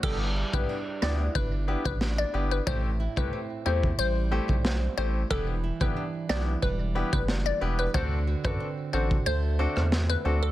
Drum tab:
CC |x---------------|----------------|----------------|----------------|
SD |------o-----o---|------------o---|------o-----o---|-----------ro---|
BD |o--o----o--o----|o--o---o---o----|o--o----o--o----|o--o---o--------|